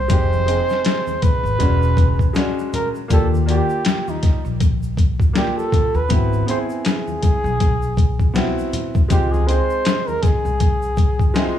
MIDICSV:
0, 0, Header, 1, 5, 480
1, 0, Start_track
1, 0, Tempo, 750000
1, 68, Time_signature, 4, 2, 24, 8
1, 7416, End_track
2, 0, Start_track
2, 0, Title_t, "Flugelhorn"
2, 0, Program_c, 0, 56
2, 0, Note_on_c, 0, 72, 117
2, 787, Note_on_c, 0, 71, 103
2, 797, Note_off_c, 0, 72, 0
2, 1586, Note_off_c, 0, 71, 0
2, 1754, Note_on_c, 0, 70, 84
2, 1856, Note_off_c, 0, 70, 0
2, 2001, Note_on_c, 0, 69, 91
2, 2103, Note_off_c, 0, 69, 0
2, 2238, Note_on_c, 0, 67, 97
2, 2621, Note_on_c, 0, 63, 76
2, 2631, Note_off_c, 0, 67, 0
2, 2854, Note_off_c, 0, 63, 0
2, 3436, Note_on_c, 0, 67, 79
2, 3566, Note_on_c, 0, 69, 88
2, 3576, Note_off_c, 0, 67, 0
2, 3812, Note_on_c, 0, 71, 95
2, 3822, Note_off_c, 0, 69, 0
2, 4149, Note_off_c, 0, 71, 0
2, 4153, Note_on_c, 0, 72, 95
2, 4214, Note_off_c, 0, 72, 0
2, 4284, Note_on_c, 0, 68, 92
2, 5460, Note_off_c, 0, 68, 0
2, 5832, Note_on_c, 0, 67, 96
2, 5963, Note_on_c, 0, 68, 87
2, 5972, Note_off_c, 0, 67, 0
2, 6064, Note_on_c, 0, 72, 108
2, 6073, Note_off_c, 0, 68, 0
2, 6446, Note_on_c, 0, 70, 93
2, 6455, Note_off_c, 0, 72, 0
2, 6544, Note_on_c, 0, 68, 91
2, 6553, Note_off_c, 0, 70, 0
2, 7416, Note_off_c, 0, 68, 0
2, 7416, End_track
3, 0, Start_track
3, 0, Title_t, "Upright piano"
3, 0, Program_c, 1, 0
3, 52, Note_on_c, 1, 56, 70
3, 61, Note_on_c, 1, 60, 65
3, 71, Note_on_c, 1, 63, 64
3, 78, Note_on_c, 1, 67, 79
3, 258, Note_off_c, 1, 56, 0
3, 262, Note_off_c, 1, 60, 0
3, 267, Note_off_c, 1, 63, 0
3, 271, Note_off_c, 1, 67, 0
3, 295, Note_on_c, 1, 56, 68
3, 303, Note_on_c, 1, 60, 62
3, 311, Note_on_c, 1, 63, 64
3, 319, Note_on_c, 1, 68, 62
3, 354, Note_off_c, 1, 68, 0
3, 364, Note_on_c, 1, 68, 78
3, 1006, Note_off_c, 1, 56, 0
3, 1015, Note_on_c, 1, 56, 73
3, 1024, Note_on_c, 1, 61, 66
3, 1026, Note_off_c, 1, 60, 0
3, 1030, Note_off_c, 1, 63, 0
3, 1032, Note_on_c, 1, 62, 67
3, 1039, Note_on_c, 1, 66, 76
3, 1056, Note_off_c, 1, 68, 0
3, 1421, Note_off_c, 1, 56, 0
3, 1425, Note_off_c, 1, 61, 0
3, 1429, Note_off_c, 1, 62, 0
3, 1433, Note_off_c, 1, 66, 0
3, 1493, Note_on_c, 1, 56, 73
3, 1502, Note_on_c, 1, 61, 70
3, 1510, Note_on_c, 1, 62, 71
3, 1518, Note_on_c, 1, 66, 86
3, 1896, Note_off_c, 1, 56, 0
3, 1900, Note_off_c, 1, 61, 0
3, 1905, Note_off_c, 1, 62, 0
3, 1909, Note_off_c, 1, 66, 0
3, 1973, Note_on_c, 1, 58, 71
3, 1981, Note_on_c, 1, 62, 64
3, 1987, Note_on_c, 1, 65, 62
3, 1999, Note_on_c, 1, 67, 79
3, 2178, Note_off_c, 1, 58, 0
3, 2182, Note_off_c, 1, 62, 0
3, 2186, Note_off_c, 1, 65, 0
3, 2191, Note_off_c, 1, 67, 0
3, 2214, Note_on_c, 1, 58, 67
3, 2223, Note_on_c, 1, 74, 62
3, 2231, Note_on_c, 1, 65, 68
3, 2239, Note_on_c, 1, 67, 73
3, 2986, Note_off_c, 1, 58, 0
3, 2990, Note_off_c, 1, 74, 0
3, 2994, Note_off_c, 1, 65, 0
3, 2998, Note_off_c, 1, 67, 0
3, 3414, Note_on_c, 1, 58, 64
3, 3421, Note_on_c, 1, 62, 58
3, 3431, Note_on_c, 1, 65, 63
3, 3437, Note_on_c, 1, 67, 69
3, 3816, Note_off_c, 1, 58, 0
3, 3820, Note_off_c, 1, 62, 0
3, 3825, Note_off_c, 1, 65, 0
3, 3828, Note_off_c, 1, 67, 0
3, 3896, Note_on_c, 1, 59, 69
3, 3906, Note_on_c, 1, 60, 64
3, 3912, Note_on_c, 1, 64, 64
3, 3919, Note_on_c, 1, 66, 78
3, 4100, Note_off_c, 1, 59, 0
3, 4105, Note_off_c, 1, 60, 0
3, 4108, Note_off_c, 1, 64, 0
3, 4112, Note_off_c, 1, 66, 0
3, 4135, Note_on_c, 1, 59, 71
3, 4143, Note_on_c, 1, 60, 63
3, 4153, Note_on_c, 1, 64, 66
3, 4160, Note_on_c, 1, 68, 75
3, 4907, Note_off_c, 1, 59, 0
3, 4910, Note_off_c, 1, 60, 0
3, 4916, Note_off_c, 1, 64, 0
3, 4919, Note_off_c, 1, 68, 0
3, 5335, Note_on_c, 1, 59, 80
3, 5343, Note_on_c, 1, 60, 71
3, 5352, Note_on_c, 1, 64, 72
3, 5360, Note_on_c, 1, 66, 84
3, 5737, Note_off_c, 1, 59, 0
3, 5741, Note_off_c, 1, 60, 0
3, 5745, Note_off_c, 1, 64, 0
3, 5749, Note_off_c, 1, 66, 0
3, 5814, Note_on_c, 1, 56, 73
3, 5822, Note_on_c, 1, 60, 63
3, 5833, Note_on_c, 1, 63, 65
3, 5838, Note_on_c, 1, 65, 80
3, 6019, Note_off_c, 1, 56, 0
3, 6023, Note_off_c, 1, 60, 0
3, 6028, Note_off_c, 1, 63, 0
3, 6031, Note_off_c, 1, 65, 0
3, 6055, Note_on_c, 1, 56, 69
3, 6064, Note_on_c, 1, 60, 61
3, 6073, Note_on_c, 1, 63, 62
3, 6082, Note_on_c, 1, 68, 75
3, 6826, Note_off_c, 1, 56, 0
3, 6831, Note_off_c, 1, 60, 0
3, 6836, Note_off_c, 1, 63, 0
3, 6840, Note_off_c, 1, 68, 0
3, 7257, Note_on_c, 1, 56, 78
3, 7266, Note_on_c, 1, 60, 68
3, 7273, Note_on_c, 1, 63, 71
3, 7281, Note_on_c, 1, 64, 68
3, 7323, Note_off_c, 1, 64, 0
3, 7324, Note_on_c, 1, 65, 85
3, 7416, Note_off_c, 1, 56, 0
3, 7416, Note_off_c, 1, 60, 0
3, 7416, Note_off_c, 1, 63, 0
3, 7416, Note_off_c, 1, 65, 0
3, 7416, End_track
4, 0, Start_track
4, 0, Title_t, "Upright bass"
4, 0, Program_c, 2, 32
4, 63, Note_on_c, 2, 29, 96
4, 371, Note_off_c, 2, 29, 0
4, 918, Note_on_c, 2, 32, 75
4, 1003, Note_off_c, 2, 32, 0
4, 1022, Note_on_c, 2, 28, 99
4, 1412, Note_off_c, 2, 28, 0
4, 1985, Note_on_c, 2, 39, 98
4, 2292, Note_off_c, 2, 39, 0
4, 2846, Note_on_c, 2, 34, 72
4, 3402, Note_off_c, 2, 34, 0
4, 3804, Note_on_c, 2, 39, 86
4, 3887, Note_off_c, 2, 39, 0
4, 3907, Note_on_c, 2, 32, 104
4, 4101, Note_off_c, 2, 32, 0
4, 4761, Note_on_c, 2, 35, 82
4, 5459, Note_off_c, 2, 35, 0
4, 5826, Note_on_c, 2, 37, 96
4, 6133, Note_off_c, 2, 37, 0
4, 6687, Note_on_c, 2, 36, 77
4, 7242, Note_off_c, 2, 36, 0
4, 7416, End_track
5, 0, Start_track
5, 0, Title_t, "Drums"
5, 59, Note_on_c, 9, 82, 66
5, 62, Note_on_c, 9, 42, 103
5, 64, Note_on_c, 9, 36, 106
5, 123, Note_off_c, 9, 82, 0
5, 126, Note_off_c, 9, 42, 0
5, 128, Note_off_c, 9, 36, 0
5, 210, Note_on_c, 9, 63, 60
5, 210, Note_on_c, 9, 82, 41
5, 274, Note_off_c, 9, 63, 0
5, 274, Note_off_c, 9, 82, 0
5, 307, Note_on_c, 9, 42, 78
5, 308, Note_on_c, 9, 82, 43
5, 371, Note_off_c, 9, 42, 0
5, 372, Note_off_c, 9, 82, 0
5, 443, Note_on_c, 9, 82, 41
5, 454, Note_on_c, 9, 38, 31
5, 507, Note_off_c, 9, 82, 0
5, 518, Note_off_c, 9, 38, 0
5, 541, Note_on_c, 9, 42, 83
5, 550, Note_on_c, 9, 38, 101
5, 555, Note_on_c, 9, 82, 60
5, 605, Note_off_c, 9, 42, 0
5, 614, Note_off_c, 9, 38, 0
5, 619, Note_off_c, 9, 82, 0
5, 686, Note_on_c, 9, 63, 62
5, 686, Note_on_c, 9, 82, 44
5, 750, Note_off_c, 9, 63, 0
5, 750, Note_off_c, 9, 82, 0
5, 783, Note_on_c, 9, 42, 70
5, 785, Note_on_c, 9, 36, 97
5, 792, Note_on_c, 9, 64, 56
5, 792, Note_on_c, 9, 82, 45
5, 847, Note_off_c, 9, 42, 0
5, 849, Note_off_c, 9, 36, 0
5, 856, Note_off_c, 9, 64, 0
5, 856, Note_off_c, 9, 82, 0
5, 931, Note_on_c, 9, 82, 39
5, 995, Note_off_c, 9, 82, 0
5, 1023, Note_on_c, 9, 42, 81
5, 1025, Note_on_c, 9, 36, 86
5, 1026, Note_on_c, 9, 63, 42
5, 1026, Note_on_c, 9, 82, 56
5, 1087, Note_off_c, 9, 42, 0
5, 1089, Note_off_c, 9, 36, 0
5, 1090, Note_off_c, 9, 63, 0
5, 1090, Note_off_c, 9, 82, 0
5, 1168, Note_on_c, 9, 82, 50
5, 1232, Note_off_c, 9, 82, 0
5, 1261, Note_on_c, 9, 36, 91
5, 1262, Note_on_c, 9, 82, 43
5, 1268, Note_on_c, 9, 42, 60
5, 1325, Note_off_c, 9, 36, 0
5, 1326, Note_off_c, 9, 82, 0
5, 1332, Note_off_c, 9, 42, 0
5, 1404, Note_on_c, 9, 36, 78
5, 1411, Note_on_c, 9, 63, 54
5, 1411, Note_on_c, 9, 82, 38
5, 1468, Note_off_c, 9, 36, 0
5, 1475, Note_off_c, 9, 63, 0
5, 1475, Note_off_c, 9, 82, 0
5, 1502, Note_on_c, 9, 82, 65
5, 1511, Note_on_c, 9, 38, 103
5, 1512, Note_on_c, 9, 42, 84
5, 1566, Note_off_c, 9, 82, 0
5, 1575, Note_off_c, 9, 38, 0
5, 1576, Note_off_c, 9, 42, 0
5, 1657, Note_on_c, 9, 82, 48
5, 1721, Note_off_c, 9, 82, 0
5, 1750, Note_on_c, 9, 63, 46
5, 1750, Note_on_c, 9, 64, 66
5, 1750, Note_on_c, 9, 82, 46
5, 1752, Note_on_c, 9, 42, 71
5, 1814, Note_off_c, 9, 63, 0
5, 1814, Note_off_c, 9, 64, 0
5, 1814, Note_off_c, 9, 82, 0
5, 1816, Note_off_c, 9, 42, 0
5, 1889, Note_on_c, 9, 82, 39
5, 1953, Note_off_c, 9, 82, 0
5, 1986, Note_on_c, 9, 36, 102
5, 1986, Note_on_c, 9, 82, 66
5, 1987, Note_on_c, 9, 42, 98
5, 2050, Note_off_c, 9, 36, 0
5, 2050, Note_off_c, 9, 82, 0
5, 2051, Note_off_c, 9, 42, 0
5, 2141, Note_on_c, 9, 63, 56
5, 2141, Note_on_c, 9, 82, 43
5, 2205, Note_off_c, 9, 63, 0
5, 2205, Note_off_c, 9, 82, 0
5, 2231, Note_on_c, 9, 42, 75
5, 2233, Note_on_c, 9, 82, 44
5, 2295, Note_off_c, 9, 42, 0
5, 2297, Note_off_c, 9, 82, 0
5, 2365, Note_on_c, 9, 82, 45
5, 2429, Note_off_c, 9, 82, 0
5, 2462, Note_on_c, 9, 42, 85
5, 2471, Note_on_c, 9, 38, 110
5, 2477, Note_on_c, 9, 82, 60
5, 2526, Note_off_c, 9, 42, 0
5, 2535, Note_off_c, 9, 38, 0
5, 2541, Note_off_c, 9, 82, 0
5, 2610, Note_on_c, 9, 63, 63
5, 2610, Note_on_c, 9, 82, 42
5, 2674, Note_off_c, 9, 63, 0
5, 2674, Note_off_c, 9, 82, 0
5, 2705, Note_on_c, 9, 42, 73
5, 2708, Note_on_c, 9, 36, 90
5, 2713, Note_on_c, 9, 64, 59
5, 2713, Note_on_c, 9, 82, 41
5, 2714, Note_on_c, 9, 38, 36
5, 2769, Note_off_c, 9, 42, 0
5, 2772, Note_off_c, 9, 36, 0
5, 2777, Note_off_c, 9, 64, 0
5, 2777, Note_off_c, 9, 82, 0
5, 2778, Note_off_c, 9, 38, 0
5, 2849, Note_on_c, 9, 82, 41
5, 2913, Note_off_c, 9, 82, 0
5, 2947, Note_on_c, 9, 42, 81
5, 2948, Note_on_c, 9, 36, 88
5, 2952, Note_on_c, 9, 63, 43
5, 2952, Note_on_c, 9, 82, 59
5, 3011, Note_off_c, 9, 42, 0
5, 3012, Note_off_c, 9, 36, 0
5, 3016, Note_off_c, 9, 63, 0
5, 3016, Note_off_c, 9, 82, 0
5, 3090, Note_on_c, 9, 82, 50
5, 3154, Note_off_c, 9, 82, 0
5, 3183, Note_on_c, 9, 36, 91
5, 3186, Note_on_c, 9, 82, 39
5, 3191, Note_on_c, 9, 42, 64
5, 3247, Note_off_c, 9, 36, 0
5, 3250, Note_off_c, 9, 82, 0
5, 3255, Note_off_c, 9, 42, 0
5, 3326, Note_on_c, 9, 36, 80
5, 3335, Note_on_c, 9, 63, 56
5, 3335, Note_on_c, 9, 82, 38
5, 3390, Note_off_c, 9, 36, 0
5, 3399, Note_off_c, 9, 63, 0
5, 3399, Note_off_c, 9, 82, 0
5, 3426, Note_on_c, 9, 82, 60
5, 3427, Note_on_c, 9, 38, 98
5, 3429, Note_on_c, 9, 42, 80
5, 3490, Note_off_c, 9, 82, 0
5, 3491, Note_off_c, 9, 38, 0
5, 3493, Note_off_c, 9, 42, 0
5, 3578, Note_on_c, 9, 82, 47
5, 3642, Note_off_c, 9, 82, 0
5, 3663, Note_on_c, 9, 36, 84
5, 3667, Note_on_c, 9, 63, 47
5, 3667, Note_on_c, 9, 64, 62
5, 3667, Note_on_c, 9, 82, 47
5, 3671, Note_on_c, 9, 42, 72
5, 3727, Note_off_c, 9, 36, 0
5, 3731, Note_off_c, 9, 63, 0
5, 3731, Note_off_c, 9, 64, 0
5, 3731, Note_off_c, 9, 82, 0
5, 3735, Note_off_c, 9, 42, 0
5, 3804, Note_on_c, 9, 82, 37
5, 3868, Note_off_c, 9, 82, 0
5, 3901, Note_on_c, 9, 82, 65
5, 3904, Note_on_c, 9, 42, 103
5, 3907, Note_on_c, 9, 36, 102
5, 3965, Note_off_c, 9, 82, 0
5, 3968, Note_off_c, 9, 42, 0
5, 3971, Note_off_c, 9, 36, 0
5, 4051, Note_on_c, 9, 63, 59
5, 4051, Note_on_c, 9, 82, 41
5, 4115, Note_off_c, 9, 63, 0
5, 4115, Note_off_c, 9, 82, 0
5, 4148, Note_on_c, 9, 42, 78
5, 4150, Note_on_c, 9, 82, 44
5, 4212, Note_off_c, 9, 42, 0
5, 4214, Note_off_c, 9, 82, 0
5, 4285, Note_on_c, 9, 82, 45
5, 4349, Note_off_c, 9, 82, 0
5, 4382, Note_on_c, 9, 42, 86
5, 4391, Note_on_c, 9, 38, 111
5, 4394, Note_on_c, 9, 82, 58
5, 4446, Note_off_c, 9, 42, 0
5, 4455, Note_off_c, 9, 38, 0
5, 4458, Note_off_c, 9, 82, 0
5, 4529, Note_on_c, 9, 63, 61
5, 4529, Note_on_c, 9, 82, 42
5, 4593, Note_off_c, 9, 63, 0
5, 4593, Note_off_c, 9, 82, 0
5, 4624, Note_on_c, 9, 42, 75
5, 4627, Note_on_c, 9, 36, 90
5, 4633, Note_on_c, 9, 64, 58
5, 4633, Note_on_c, 9, 82, 43
5, 4688, Note_off_c, 9, 42, 0
5, 4691, Note_off_c, 9, 36, 0
5, 4697, Note_off_c, 9, 64, 0
5, 4697, Note_off_c, 9, 82, 0
5, 4771, Note_on_c, 9, 82, 41
5, 4835, Note_off_c, 9, 82, 0
5, 4866, Note_on_c, 9, 42, 81
5, 4867, Note_on_c, 9, 36, 87
5, 4870, Note_on_c, 9, 63, 46
5, 4870, Note_on_c, 9, 64, 61
5, 4870, Note_on_c, 9, 82, 56
5, 4930, Note_off_c, 9, 42, 0
5, 4931, Note_off_c, 9, 36, 0
5, 4934, Note_off_c, 9, 63, 0
5, 4934, Note_off_c, 9, 64, 0
5, 4934, Note_off_c, 9, 82, 0
5, 5006, Note_on_c, 9, 82, 52
5, 5070, Note_off_c, 9, 82, 0
5, 5102, Note_on_c, 9, 82, 40
5, 5103, Note_on_c, 9, 36, 96
5, 5110, Note_on_c, 9, 42, 68
5, 5166, Note_off_c, 9, 82, 0
5, 5167, Note_off_c, 9, 36, 0
5, 5174, Note_off_c, 9, 42, 0
5, 5245, Note_on_c, 9, 36, 75
5, 5248, Note_on_c, 9, 63, 54
5, 5248, Note_on_c, 9, 82, 38
5, 5309, Note_off_c, 9, 36, 0
5, 5312, Note_off_c, 9, 63, 0
5, 5312, Note_off_c, 9, 82, 0
5, 5344, Note_on_c, 9, 82, 63
5, 5349, Note_on_c, 9, 38, 97
5, 5350, Note_on_c, 9, 42, 82
5, 5408, Note_off_c, 9, 82, 0
5, 5413, Note_off_c, 9, 38, 0
5, 5414, Note_off_c, 9, 42, 0
5, 5495, Note_on_c, 9, 82, 46
5, 5559, Note_off_c, 9, 82, 0
5, 5589, Note_on_c, 9, 63, 43
5, 5589, Note_on_c, 9, 64, 62
5, 5589, Note_on_c, 9, 82, 45
5, 5590, Note_on_c, 9, 42, 76
5, 5653, Note_off_c, 9, 63, 0
5, 5653, Note_off_c, 9, 64, 0
5, 5653, Note_off_c, 9, 82, 0
5, 5654, Note_off_c, 9, 42, 0
5, 5727, Note_on_c, 9, 82, 38
5, 5728, Note_on_c, 9, 36, 86
5, 5791, Note_off_c, 9, 82, 0
5, 5792, Note_off_c, 9, 36, 0
5, 5825, Note_on_c, 9, 42, 105
5, 5826, Note_on_c, 9, 82, 68
5, 5827, Note_on_c, 9, 36, 105
5, 5889, Note_off_c, 9, 42, 0
5, 5890, Note_off_c, 9, 82, 0
5, 5891, Note_off_c, 9, 36, 0
5, 5976, Note_on_c, 9, 63, 61
5, 5976, Note_on_c, 9, 82, 43
5, 6040, Note_off_c, 9, 63, 0
5, 6040, Note_off_c, 9, 82, 0
5, 6071, Note_on_c, 9, 42, 77
5, 6076, Note_on_c, 9, 82, 43
5, 6135, Note_off_c, 9, 42, 0
5, 6140, Note_off_c, 9, 82, 0
5, 6207, Note_on_c, 9, 82, 43
5, 6271, Note_off_c, 9, 82, 0
5, 6305, Note_on_c, 9, 42, 88
5, 6314, Note_on_c, 9, 38, 109
5, 6318, Note_on_c, 9, 82, 58
5, 6369, Note_off_c, 9, 42, 0
5, 6378, Note_off_c, 9, 38, 0
5, 6382, Note_off_c, 9, 82, 0
5, 6452, Note_on_c, 9, 63, 62
5, 6452, Note_on_c, 9, 82, 43
5, 6516, Note_off_c, 9, 63, 0
5, 6516, Note_off_c, 9, 82, 0
5, 6545, Note_on_c, 9, 42, 75
5, 6547, Note_on_c, 9, 36, 94
5, 6554, Note_on_c, 9, 38, 37
5, 6558, Note_on_c, 9, 64, 59
5, 6558, Note_on_c, 9, 82, 42
5, 6609, Note_off_c, 9, 42, 0
5, 6611, Note_off_c, 9, 36, 0
5, 6618, Note_off_c, 9, 38, 0
5, 6622, Note_off_c, 9, 64, 0
5, 6622, Note_off_c, 9, 82, 0
5, 6690, Note_on_c, 9, 82, 43
5, 6754, Note_off_c, 9, 82, 0
5, 6785, Note_on_c, 9, 42, 81
5, 6786, Note_on_c, 9, 63, 45
5, 6786, Note_on_c, 9, 82, 64
5, 6787, Note_on_c, 9, 36, 86
5, 6849, Note_off_c, 9, 42, 0
5, 6850, Note_off_c, 9, 63, 0
5, 6850, Note_off_c, 9, 82, 0
5, 6851, Note_off_c, 9, 36, 0
5, 6926, Note_on_c, 9, 82, 51
5, 6990, Note_off_c, 9, 82, 0
5, 7020, Note_on_c, 9, 82, 44
5, 7022, Note_on_c, 9, 36, 97
5, 7029, Note_on_c, 9, 42, 67
5, 7084, Note_off_c, 9, 82, 0
5, 7086, Note_off_c, 9, 36, 0
5, 7093, Note_off_c, 9, 42, 0
5, 7165, Note_on_c, 9, 36, 84
5, 7171, Note_on_c, 9, 63, 55
5, 7171, Note_on_c, 9, 82, 39
5, 7229, Note_off_c, 9, 36, 0
5, 7235, Note_off_c, 9, 63, 0
5, 7235, Note_off_c, 9, 82, 0
5, 7263, Note_on_c, 9, 82, 62
5, 7269, Note_on_c, 9, 38, 104
5, 7270, Note_on_c, 9, 42, 89
5, 7327, Note_off_c, 9, 82, 0
5, 7333, Note_off_c, 9, 38, 0
5, 7334, Note_off_c, 9, 42, 0
5, 7416, End_track
0, 0, End_of_file